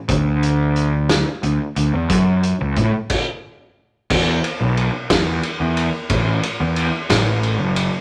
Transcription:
0.09 1.22 D2 loud
0.09 kick loud
0.09 closed hi-hat medium
0.43 closed hi-hat medium
0.76 closed hi-hat medium
1.09 snare loud
1.09 closed hi-hat loud
1.43 1.57 D2 medium
1.43 closed hi-hat medium
1.76 1.90 D2 medium
1.76 closed hi-hat medium
1.94 2.07 E2 medium
2.10 2.52 F#2 loud
2.10 kick loud
2.10 closed hi-hat loud
2.43 closed hi-hat medium
2.60 2.74 C#2 medium
2.76 2.91 A2 medium
2.76 kick medium
2.76 closed hi-hat medium
3.10 kick loud
3.10 crash loud
4.10 4.39 E2 loud
4.10 kick loud
4.10 crash loud
4.44 ride medium
4.61 4.89 B1 medium
4.77 ride medium
5.10 5.38 E2 medium
5.10 kick medium
5.10 snare loud
5.10 ride loud
5.43 ride medium
5.60 5.88 E2 medium
5.77 ride medium
6.10 6.38 A1 loud
6.10 kick loud
6.10 ride loud
6.43 ride medium
6.60 6.88 E2 medium
6.76 ride medium
7.10 7.60 A1 medium
7.10 kick medium
7.10 snare loud
7.10 ride loud
7.43 ride medium
7.60 7.88 F#1 medium
7.76 ride medium

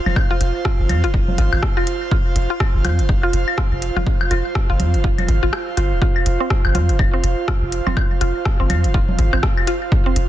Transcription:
0.00 10.29 F4 medium
0.00 10.29 C5 medium
0.00 10.29 F5 medium
0.06 0.14 F1 medium
0.06 low conga medium
0.06 claves soft
0.16 kick loud
0.16 high woodblock medium
0.31 0.36 F4 loud
0.41 0.52 F1 loud
0.41 closed hi-hat medium
0.65 0.73 F4 medium
0.65 kick loud
0.65 cross-stick medium
0.79 0.91 G#1 medium
0.89 1.05 F2 medium
0.89 closed hi-hat medium
0.89 low conga medium
0.89 claves soft
1.04 1.22 F1 loud
1.04 1.09 F4 loud
1.04 closed hi-hat soft
1.14 kick loud
1.28 low conga medium
1.38 1.50 G#1 loud
1.38 1.46 F4 medium
1.38 kick medium
1.38 closed hi-hat medium
1.53 1.61 G#1 medium
1.53 high woodblock medium
1.63 kick loud
1.63 cross-stick medium
1.77 1.82 F4 loud
1.77 claves soft
1.87 closed hi-hat medium
2.11 2.19 F4 medium
2.11 kick loud
2.36 2.47 F1 loud
2.36 closed hi-hat medium
2.50 2.55 F4 loud
2.60 kick loud
2.60 cross-stick medium
2.60 claves soft
2.75 2.86 G#1 medium
2.85 3.00 F2 medium
2.85 2.92 F4 medium
2.85 closed hi-hat medium
2.85 low conga medium
2.85 high woodblock medium
2.99 3.17 F1 loud
2.99 closed hi-hat soft
3.09 kick loud
3.23 3.29 F4 loud
3.33 3.45 F1 medium
3.33 closed hi-hat medium
3.48 claves soft
3.58 3.65 F4 medium
3.58 kick loud
3.58 cross-stick medium
3.72 3.91 F1 medium
3.82 closed hi-hat medium
3.96 4.04 F1 medium
3.96 4.02 F4 loud
3.96 low conga medium
4.07 kick loud
4.21 high woodblock medium
4.31 4.42 F1 loud
4.31 4.38 F4 medium
4.31 closed hi-hat medium
4.31 claves soft
4.55 kick loud
4.55 cross-stick medium
4.70 4.81 G#1 medium
4.70 4.75 F4 loud
4.80 4.96 F2 medium
4.80 closed hi-hat medium
4.80 low conga medium
4.94 5.13 F1 loud
4.94 closed hi-hat soft
5.04 5.12 F4 medium
5.04 kick loud
5.18 closed hi-hat soft
5.18 low conga medium
5.18 claves soft
5.28 5.40 G#1 loud
5.28 kick medium
5.28 closed hi-hat medium
5.43 5.51 G#1 medium
5.43 5.48 F4 loud
5.53 cross-stick medium
5.53 high woodblock medium
5.77 5.93 G1 medium
5.77 5.85 F4 medium
5.77 closed hi-hat medium
5.92 6.00 D#1 medium
6.02 6.09 F4 medium
6.02 kick loud
6.16 claves soft
6.26 6.37 F1 loud
6.26 closed hi-hat medium
6.40 6.46 C4 medium
6.50 kick loud
6.50 cross-stick medium
6.65 6.76 G#1 medium
6.65 high woodblock medium
6.75 6.91 F2 medium
6.75 6.82 F4 medium
6.75 closed hi-hat medium
6.75 low conga medium
6.89 7.08 F1 loud
6.89 closed hi-hat soft
6.99 kick loud
6.99 claves soft
7.13 7.19 C4 medium
7.24 7.35 F1 medium
7.24 closed hi-hat medium
7.48 7.56 F4 medium
7.48 kick loud
7.48 cross-stick medium
7.62 7.81 F1 medium
7.72 closed hi-hat medium
7.87 7.95 F1 medium
7.87 7.92 C4 medium
7.87 low conga medium
7.87 claves soft
7.97 kick loud
7.97 high woodblock medium
8.21 8.33 F1 medium
8.21 8.29 F4 medium
8.21 closed hi-hat medium
8.45 kick loud
8.45 cross-stick medium
8.60 8.71 G#1 medium
8.60 8.65 C4 medium
8.70 8.86 F2 medium
8.70 closed hi-hat medium
8.70 low conga medium
8.70 claves soft
8.84 9.03 F1 loud
8.84 closed hi-hat soft
8.94 9.02 F4 medium
8.94 kick loud
9.09 low conga medium
9.19 9.30 G#1 loud
9.19 kick medium
9.19 closed hi-hat medium
9.33 9.41 G#1 medium
9.33 9.38 C4 medium
9.33 high woodblock medium
9.43 kick loud
9.43 cross-stick medium
9.57 claves soft
9.67 9.75 F4 medium
9.67 closed hi-hat medium
9.92 kick loud
10.06 10.11 C4 medium
10.16 10.28 F1 loud
10.16 closed hi-hat medium

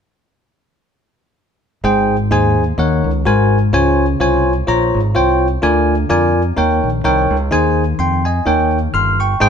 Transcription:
1.84 2.32 G#1 medium
1.84 2.54 G#2 medium
1.84 2.15 D#4 medium
1.84 2.15 G#4 medium
1.84 2.16 C5 medium
1.84 2.16 G5 medium
2.31 2.71 D#2 medium
2.31 2.63 D#4 medium
2.31 2.63 G#4 medium
2.31 2.63 C5 medium
2.31 2.63 G#5 medium
2.78 3.00 D#2 loud
2.78 3.23 D#3 medium
2.78 3.10 D#4 medium
2.78 3.10 A#4 medium
2.78 3.10 C#5 medium
2.78 3.10 F#5 medium
3.04 3.22 C#2 medium
3.25 3.66 G#1 medium
3.25 3.70 G#2 medium
3.25 3.57 F#4 medium
3.25 3.57 A#4 medium
3.25 3.58 C5 medium
3.25 3.58 G#5 medium
3.73 4.13 C#2 loud
3.73 4.43 C#3 medium
3.73 4.05 F4 medium
3.73 4.05 C5 medium
3.73 4.05 C#5 medium
3.73 4.05 G#5 medium
4.20 4.61 C2 medium
4.20 4.52 F4 medium
4.20 4.52 C5 medium
4.20 4.52 C#5 medium
4.20 4.52 G#5 medium
4.67 4.90 A#1 medium
4.67 4.99 F4 medium
4.67 4.99 C5 medium
4.67 4.99 C#5 medium
4.67 5.00 A#5 medium
4.94 5.12 G#1 medium
5.15 5.56 C2 medium
5.15 5.46 F4 medium
5.15 5.47 C5 medium
5.15 5.47 C#5 medium
5.15 5.47 G5 medium
5.62 6.03 D2 medium
5.62 6.32 D3 medium
5.62 5.94 F4 medium
5.62 5.94 A#4 medium
5.62 5.94 D5 medium
5.62 5.94 G#5 medium
6.10 6.50 F2 medium
6.10 6.41 F4 medium
6.10 6.41 A#4 medium
6.10 6.41 D5 medium
6.10 6.42 G#5 medium
6.57 6.79 D#2 loud
6.57 7.27 D#3 medium
6.57 6.88 D#4 medium
6.57 6.88 A#4 medium
6.57 6.89 C#5 medium
6.57 6.89 G5 medium
6.83 7.01 A#1 medium
7.04 7.27 C2 medium
7.04 7.36 D#4 medium
7.04 7.36 A#4 medium
7.04 7.36 C#5 medium
7.04 7.36 G5 medium
7.31 7.48 C#2 medium
7.51 7.92 D#2 medium
7.51 8.21 D#3 medium
7.51 7.83 D#4 medium
7.51 7.83 G#4 medium
7.51 7.83 C5 medium
7.51 7.83 G#5 medium
7.99 8.39 F2 medium
7.99 8.24 G5 medium
7.99 8.24 C6 medium
8.25 8.70 D#5 soft
8.25 8.70 G#5 medium
8.46 8.86 D#2 loud
8.46 9.16 D#3 medium
8.46 8.77 D#4 medium
8.46 8.78 A#4 medium
8.46 8.78 C#5 medium
8.46 8.78 G5 medium
8.94 9.34 G1 medium
8.94 9.19 C6 medium
8.94 9.18 F6 medium
9.20 9.40 G5 soft
9.20 9.49 C#6 medium
9.40 9.49 G#1 medium
9.40 9.49 G#2 medium
9.40 9.49 D#4 medium
9.40 9.49 G#4 medium
9.40 9.49 C5 medium
9.40 9.49 G5 loud

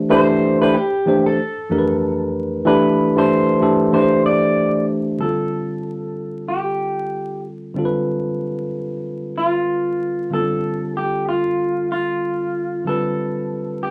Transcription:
0.00 0.09 E3 medium
0.00 0.10 A3 medium
0.00 0.10 D4 medium
0.00 0.11 G4 medium
0.00 0.11 C5 medium
0.09 0.54 E3 medium
0.09 0.55 A3 medium
0.09 0.55 D4 medium
0.09 0.55 G4 medium
0.09 0.61 C5 loud
0.09 0.55 C5 loud
0.61 0.73 E3 medium
0.61 0.74 A3 medium
0.61 0.74 D4 medium
0.61 0.74 G4 medium
0.61 0.73 B4 medium
0.61 0.74 C5 medium
0.74 1.26 G4 medium
1.06 1.37 E3 medium
1.06 1.38 A3 medium
1.06 1.38 D4 medium
1.06 1.38 G4 medium
1.06 1.39 C5 medium
1.26 2.30 A4 medium
1.69 2.57 F2 medium
1.69 2.57 E3 medium
1.69 2.58 A3 medium
1.69 2.58 D4 medium
1.69 2.58 G4 medium
1.69 1.78 A#4 medium
1.78 2.61 B4 medium
2.65 3.10 E3 loud
2.65 3.10 A3 medium
2.65 3.11 D4 medium
2.65 3.11 G4 medium
2.65 3.18 B4 medium
2.65 3.11 B4 loud
3.16 3.57 E3 medium
3.16 3.57 A3 medium
3.16 3.57 D4 medium
3.16 3.57 G4 medium
3.16 3.58 A4 medium
3.16 3.92 C5 medium
3.60 3.91 E3 medium
3.60 3.91 A3 medium
3.60 3.92 D4 medium
3.60 3.93 G4 medium
3.60 3.93 A4 medium
3.92 5.09 E3 medium
3.92 5.10 A3 medium
3.92 5.10 D4 medium
3.92 5.10 G4 medium
3.92 4.01 B4 medium
3.92 4.25 C5 medium
4.01 5.14 C5 medium
4.26 4.85 D5 medium
5.19 7.71 D3 medium
5.19 7.71 G3 soft
5.19 7.72 C4 soft
5.19 7.73 F4 soft
5.19 6.48 A4 medium
5.24 7.73 A4 medium
6.49 7.40 G4 medium
7.74 10.26 D3 medium
7.74 10.27 G3 medium
7.74 10.27 C4 medium
7.74 10.28 F4 medium
7.79 7.85 A4 medium
7.85 10.32 B4 medium
9.37 10.33 F4 medium
10.30 12.82 D3 medium
10.30 12.82 G3 soft
10.30 10.39 B3 soft
10.30 12.83 F4 medium
10.30 10.96 A4 medium
10.35 12.84 A4 medium
10.39 12.86 C4 medium
10.97 11.28 G4 medium
11.29 11.87 F4 medium
11.92 12.83 F4 medium
12.84 13.90 D3 medium
12.84 13.90 G3 medium
12.84 13.90 C4 soft
12.84 13.90 F4 soft
12.84 13.83 A4 medium
12.89 13.90 B4 medium
13.83 13.90 G4 medium

